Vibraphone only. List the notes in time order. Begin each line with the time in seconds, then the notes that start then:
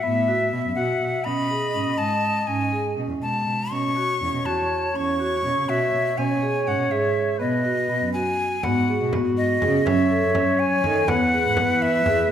0.03 B3
0.28 F#4
0.53 B3
0.77 F#4
1.26 C#4
1.50 G#4
1.74 C#4
1.99 G#3
2.48 C#4
2.72 G#4
2.97 C#4
3.21 G#3
3.71 C#4
3.96 F#4
4.21 C#4
4.46 F#4
4.95 C#4
5.20 F#4
5.44 C#4
5.69 F#4
6.17 C#4
6.42 G#4
6.67 C#4
6.91 G#4
7.40 B3
7.65 F#4
7.89 B3
8.14 F#4
8.64 B3
8.89 G#4
9.13 B3
9.62 G#4
9.86 C#4
10.11 A4
10.35 C#4
10.84 A4
11.08 B3
11.33 G#4
11.57 B3
12.06 G#4